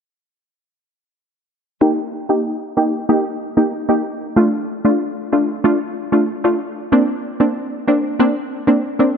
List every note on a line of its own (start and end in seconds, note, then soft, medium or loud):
1.81 2.25 A#3 medium
1.81 2.26 D#4 medium
1.81 2.26 G4 medium
2.29 2.73 A#3 medium
2.29 2.74 D#4 medium
2.29 2.74 G4 medium
2.77 3.06 A#3 medium
2.77 3.07 D#4 medium
2.77 3.07 G4 medium
3.09 3.24 A#3 loud
3.09 3.25 D#4 medium
3.09 3.25 G4 loud
3.57 3.72 A#3 medium
3.57 3.72 D#4 medium
3.57 3.73 G4 medium
3.89 4.04 A#3 medium
3.89 4.04 D#4 medium
3.89 4.05 G4 medium
4.36 4.81 A3 medium
4.36 4.81 D4 medium
4.36 4.81 F4 medium
4.85 5.29 A3 medium
4.85 5.29 D4 medium
4.85 5.29 F4 medium
5.32 5.62 A3 medium
5.32 5.62 D4 medium
5.32 5.62 F4 medium
5.64 5.80 A3 medium
5.64 5.80 D4 medium
5.64 5.80 F4 loud
6.12 6.28 A3 medium
6.12 6.28 D4 medium
6.12 6.28 F4 medium
6.44 6.60 A3 medium
6.44 6.60 D4 medium
6.44 6.60 F4 medium
6.92 7.36 A#3 medium
6.92 7.36 C4 medium
6.92 7.36 D4 medium
7.40 7.84 A#3 medium
7.40 7.84 C4 medium
7.40 7.84 D4 medium
7.88 8.17 A#3 medium
7.88 8.17 C4 medium
7.88 8.17 D4 medium
8.19 8.35 A#3 medium
8.19 8.35 C4 medium
8.19 8.35 D4 loud
8.67 8.83 A#3 medium
8.67 8.83 C4 medium
8.67 8.83 D4 medium
8.99 9.15 A#3 medium
8.99 9.15 C4 medium
8.99 9.15 D4 medium